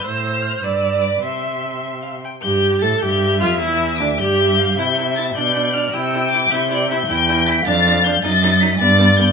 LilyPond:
<<
  \new Staff \with { instrumentName = "Violin" } { \time 6/8 \key c \major \tempo 4. = 103 e'''4 f'''8 e'''4 d'''8 | c'''2~ c'''8 r8 | g'''4 a'''8 g'''4 f'''8 | e'''4 d'''8 g'''4. |
g'''4 a'''8 g'''4 f'''8 | e'''4 d'''8 g'''4. | g'''4 b'''8 a'''4 g'''8 | a'''4 b'''8 a'''4 g'''8 | }
  \new Staff \with { instrumentName = "Violin" } { \time 6/8 \key c \major c''4. b'4. | e''4. e''8 f''8 g''8 | r4. e''4.~ | e''4. d''8 e''8 f''8 |
e''4. d''4. | g''4. e''8 d''8 e''8 | g''4. f''4. | dis''4. d''4. | }
  \new Staff \with { instrumentName = "Viola" } { \time 6/8 \key c \major c''4. d''4. | e''2~ e''16 r8. | g'4 a'8 g'4 f'8 | e'4 d'8 g'4. |
e'8 e'8 e'8 d'8 d'8 d'8 | e'8 e'8 e'8 e'8 e'8 e'8 | e'8 e'8 e'8 d'8 d'8 d'8 | dis'8 dis'8 dis'8 b8 b8 b8 | }
  \new Staff \with { instrumentName = "Cello" } { \clef bass \time 6/8 \key c \major a,4. g,4. | c2~ c8 r8 | g,4 a,8 g,4 f,8 | e,4 d,8 g,4. |
c4. b,4. | c4. c4. | e,4. f,4. | fis,4. g,4. | }
>>